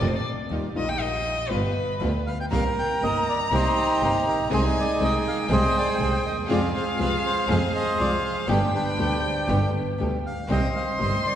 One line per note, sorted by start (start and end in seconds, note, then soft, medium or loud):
0.00 0.21 F1 loud
0.00 0.09 D3 medium
0.00 0.10 A#3 medium
0.00 0.21 C4 medium
0.00 0.10 C4 medium
0.00 0.21 D4 medium
0.00 0.10 F4 medium
0.00 0.21 A#4 medium
0.07 0.17 C5 medium
0.15 0.25 D5 medium
0.50 0.71 D#2 medium
0.50 0.67 D#3 medium
0.50 0.67 G3 medium
0.50 0.71 D#4 soft
0.50 0.68 D#4 medium
0.50 0.71 F4 soft
0.50 0.68 F4 medium
0.50 0.71 G4 medium
0.75 1.46 A#1 medium
0.75 0.84 D#3 medium
0.75 0.85 G3 medium
0.75 1.47 D#4 medium
0.75 0.84 D#4 medium
0.75 1.47 F4 medium
0.75 0.85 F4 medium
0.75 1.47 G4 medium
0.75 0.90 D#5 medium
0.89 1.02 G5 medium
1.01 1.51 D#5 medium
1.49 1.71 G1 medium
1.49 1.59 G3 medium
1.49 1.71 B3 medium
1.49 1.59 B3 medium
1.49 1.71 F4 medium
1.49 1.59 F4 medium
1.49 1.71 G4 medium
1.49 2.26 B4 medium
2.00 2.22 D2 medium
2.00 2.10 G3 medium
2.00 2.22 B3 medium
2.00 2.10 B3 medium
2.00 2.22 F4 medium
2.00 2.10 F4 medium
2.00 2.22 G4 medium
2.27 2.38 F5 medium
2.40 2.46 G5 medium
2.50 2.72 C2 medium
2.50 2.61 C3 medium
2.50 2.61 D#3 loud
2.50 2.61 A#3 loud
2.50 2.72 C4 medium
2.50 2.61 C4 medium
2.50 2.72 D#4 medium
2.50 2.61 G4 medium
2.50 2.72 A#4 medium
2.50 3.48 A#4 medium
2.50 2.64 F5 loud
2.50 4.52 A#5 loud
2.79 3.03 G5 medium
3.01 3.22 G1 medium
3.01 3.19 C3 medium
3.01 3.19 D#3 medium
3.01 3.19 A#3 medium
3.01 3.22 C4 medium
3.01 3.19 C4 medium
3.01 3.22 D#4 soft
3.01 3.19 G4 medium
3.01 3.22 A#4 medium
3.01 3.28 D#5 loud
3.29 3.40 D5 medium
3.51 3.72 C2 loud
3.51 3.60 C3 medium
3.51 3.61 D#3 medium
3.51 3.61 A#3 medium
3.51 3.72 C4 medium
3.51 3.61 C4 medium
3.51 3.72 D#4 medium
3.51 4.48 D#4 medium
3.51 3.61 G4 loud
3.51 4.48 G4 medium
3.51 3.72 A#4 medium
3.51 4.03 C5 loud
4.00 4.22 G1 medium
4.00 4.18 C3 medium
4.00 4.18 D#3 medium
4.00 4.18 A#3 medium
4.00 4.22 C4 medium
4.00 4.18 C4 medium
4.00 4.22 D#4 medium
4.00 4.18 G4 medium
4.00 4.22 A#4 medium
4.04 4.26 C5 medium
4.26 4.50 A#1 medium
4.26 4.39 A#4 medium
4.50 4.72 C2 loud
4.50 4.59 C3 medium
4.50 4.60 D#3 medium
4.50 4.60 G#3 medium
4.50 4.71 C4 medium
4.50 4.60 C4 loud
4.50 4.71 D#4 medium
4.50 5.47 D#4 medium
4.50 4.72 G#4 medium
4.50 4.60 G#4 loud
4.50 5.47 G#4 medium
4.50 4.64 C5 loud
4.50 5.02 G#5 loud
4.80 5.04 D5 medium
5.00 5.21 C2 medium
5.00 5.17 C3 medium
5.00 5.17 D#3 medium
5.00 5.17 G#3 medium
5.00 5.21 C4 medium
5.00 5.17 C4 medium
5.00 5.21 D#4 soft
5.00 5.21 G#4 medium
5.00 5.18 G#4 medium
5.00 6.50 G5 loud
5.04 5.14 D#5 loud
5.28 5.39 F5 loud
5.49 5.71 C2 loud
5.49 5.59 C3 medium
5.49 5.59 D#3 medium
5.49 5.60 G#3 medium
5.49 5.70 C4 medium
5.49 5.60 C4 loud
5.49 5.71 D#4 medium
5.49 5.71 G#4 medium
5.49 5.60 G#4 medium
5.49 6.46 G#4 medium
5.49 6.00 C5 medium
5.53 5.77 D#5 loud
5.78 5.89 D5 loud
5.99 6.20 C2 medium
5.99 6.16 C3 medium
5.99 6.17 D#3 medium
5.99 6.17 G#3 medium
5.99 6.20 C4 medium
5.99 6.17 C4 medium
5.99 6.20 D#4 soft
5.99 6.20 G#4 medium
5.99 6.17 G#4 medium
5.99 6.24 C5 loud
6.24 6.48 D#2 medium
6.24 6.37 D#5 medium
6.48 6.70 F2 loud
6.48 6.58 C3 medium
6.48 6.59 F3 medium
6.48 6.59 G#3 loud
6.48 6.69 C4 medium
6.48 6.59 C4 loud
6.48 6.69 F4 medium
6.48 7.45 F4 medium
6.48 6.59 F4 loud
6.48 6.70 G#4 loud
6.48 7.45 G#4 medium
6.48 6.62 D5 medium
6.48 7.98 F5 loud
6.77 6.87 C5 medium
6.97 7.19 C2 medium
6.97 7.16 C3 medium
6.97 7.16 F3 medium
6.97 7.16 G#3 medium
6.97 7.19 C4 medium
6.97 7.16 C4 medium
6.97 7.19 F4 medium
6.97 7.16 F4 medium
6.97 7.19 G#4 medium
6.97 7.12 B4 medium
7.26 7.49 C5 loud
7.47 7.69 F2 loud
7.47 7.58 C3 medium
7.47 7.58 F3 loud
7.47 7.58 G#3 medium
7.47 7.69 C4 medium
7.47 7.58 C4 medium
7.47 7.69 F4 medium
7.47 7.58 F4 loud
7.47 7.69 G#4 medium
7.47 8.45 G#4 medium
7.47 8.24 C5 medium
7.47 7.62 F5 medium
7.76 7.98 D#5 loud
7.97 8.19 C2 medium
7.97 8.16 C3 medium
7.97 8.16 F3 medium
7.97 8.16 G#3 medium
7.97 8.19 C4 medium
7.97 8.16 C4 medium
7.97 8.19 F4 soft
7.97 8.16 F4 medium
7.97 8.19 G#4 medium
7.97 8.11 D5 loud
7.97 8.49 F5 medium
8.25 8.50 C5 medium
8.47 8.69 G1 loud
8.47 8.57 B2 loud
8.47 8.57 D3 loud
8.47 8.58 G3 loud
8.47 8.69 B3 medium
8.47 8.58 B3 loud
8.47 8.69 D4 medium
8.47 8.73 D4 medium
8.47 8.69 G4 medium
8.47 8.58 G4 loud
8.47 8.73 G4 medium
8.47 8.62 B4 medium
8.47 10.24 G5 loud
8.74 9.70 D4 medium
8.74 9.70 G4 medium
8.74 9.21 B4 medium
8.97 9.20 D2 medium
8.97 9.16 B2 medium
8.97 9.15 D3 medium
8.97 9.16 G3 medium
8.97 9.19 B3 medium
8.97 9.16 B3 medium
8.97 9.19 D4 medium
8.97 9.19 G4 medium
8.97 9.16 G4 medium
9.23 9.49 C5 medium
9.48 9.70 G1 loud
9.48 9.57 B2 medium
9.48 9.58 D3 loud
9.48 9.58 G3 medium
9.48 9.69 B3 medium
9.48 9.58 B3 medium
9.48 9.69 D4 medium
9.48 9.70 G4 medium
9.48 9.58 G4 medium
9.48 9.72 B4 medium
9.74 10.09 B4 medium
9.98 10.20 D2 medium
9.98 10.16 B2 medium
9.98 10.16 D3 medium
9.98 10.17 G3 medium
9.98 10.20 B3 soft
9.98 10.17 B3 medium
9.98 10.20 D4 soft
9.98 10.20 G4 medium
9.98 10.17 G4 medium
10.27 10.49 F5 medium
10.49 10.70 C2 loud
10.49 10.58 C3 medium
10.49 10.59 D#3 loud
10.49 10.59 G3 medium
10.49 10.70 C4 medium
10.49 10.59 C4 loud
10.49 10.70 D#4 medium
10.49 10.70 G4 medium
10.49 10.59 G4 loud
10.49 11.00 D#5 medium
10.49 10.74 G5 medium
10.49 11.35 C6 loud
10.53 11.35 C5 medium
10.76 10.87 F5 medium
10.99 11.20 G1 medium
10.99 11.16 C3 medium
10.99 11.16 D#3 medium
10.99 11.16 G3 medium
10.99 11.20 C4 medium
10.99 11.17 C4 medium
10.99 11.20 D#4 soft
10.99 11.21 G4 medium
10.99 11.17 G4 medium
10.99 11.26 D#5 medium
11.26 11.35 D5 medium